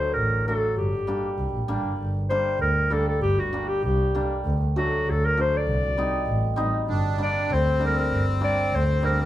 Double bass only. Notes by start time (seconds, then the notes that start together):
0.16 A1
0.77 G1
1.38 C2
1.54 A#1
1.68 A1
1.83 G1
1.98 G1
2.59 D2
3.21 G1
3.83 C2
4.44 D2
5.06 D2
5.67 C2
6.27 A1
6.89 G1
7.50 D2
8.12 G1
8.73 D2